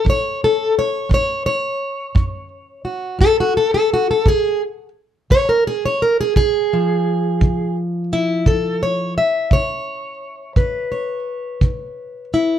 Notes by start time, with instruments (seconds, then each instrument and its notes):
0.05 steel-string acoustic guitar F#2, kick
0.10 steel-string acoustic guitar C#5
0.44 steel-string acoustic guitar A4
0.79 steel-string acoustic guitar C#5
1.09 steel-string acoustic guitar F#2, kick
1.14 steel-string acoustic guitar C#5
1.46 steel-string acoustic guitar C#5
2.15 steel-string acoustic guitar F#2, kick
2.85 steel-string acoustic guitar F#4
3.19 steel-string acoustic guitar F#2 A4, kick
3.40 steel-string acoustic guitar F#4
3.57 steel-string acoustic guitar A4
3.74 steel-string acoustic guitar A4
3.94 steel-string acoustic guitar F#4
4.11 steel-string acoustic guitar A4
4.26 steel-string acoustic guitar C#3 G#4, kick
5.30 steel-string acoustic guitar C#3 C#5, kick
5.49 steel-string acoustic guitar A#4
5.67 steel-string acoustic guitar G#4
5.86 steel-string acoustic guitar C#5
6.02 steel-string acoustic guitar A#4
6.21 steel-string acoustic guitar G#4
6.36 steel-string acoustic guitar C#3 G#4, kick
6.73 steel-string acoustic guitar F3
7.41 steel-string acoustic guitar C#3, kick
8.13 steel-string acoustic guitar E4
8.46 steel-string acoustic guitar C#3 A4, kick
8.83 steel-string acoustic guitar C#5
9.18 steel-string acoustic guitar E5
9.51 steel-string acoustic guitar C#3 C#5, kick
10.56 steel-string acoustic guitar C#3 B4, kick
10.92 steel-string acoustic guitar C#5
11.61 steel-string acoustic guitar C#3, kick
12.34 steel-string acoustic guitar E4